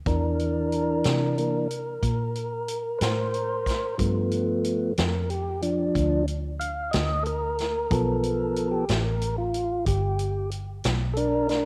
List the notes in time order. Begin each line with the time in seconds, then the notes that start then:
0.06 E2 E3 D4 A#4, kick, closed hi-hat
0.40 closed hi-hat
0.72 closed hi-hat
1.04 C3, snare, closed hi-hat
1.38 E3 A#3 D4, closed hi-hat
1.71 closed hi-hat
2.03 A#2, kick, closed hi-hat
2.35 closed hi-hat
2.68 closed hi-hat
2.99 A2 B4, snare, closed hi-hat
3.03 C5
3.34 closed hi-hat
3.66 kick, snare, closed hi-hat
3.98 G2 F3 A3 B3, kick, closed hi-hat
4.31 closed hi-hat
4.64 closed hi-hat
4.98 F2 A#4, snare, closed hi-hat
5.30 G4, closed hi-hat
5.62 F3 D4, closed hi-hat
5.95 D2, kick, closed hi-hat
6.28 closed hi-hat
6.60 F5, closed hi-hat
6.91 D2 D#5, snare, closed hi-hat
7.23 A4 A#4, closed hi-hat
7.59 snare, closed hi-hat
7.91 B1 F3 B3 A4, kick, closed hi-hat
8.23 closed hi-hat
8.56 closed hi-hat
8.71 G4
8.89 A1, snare, closed hi-hat
9.04 A#4
9.22 closed hi-hat
9.38 F4
9.54 closed hi-hat
9.86 G1 G4, kick, closed hi-hat
10.19 closed hi-hat
10.51 closed hi-hat
10.84 B1, snare, closed hi-hat
11.14 D4 A4, closed hi-hat
11.18 A#4
11.49 D4 A#4, snare, closed hi-hat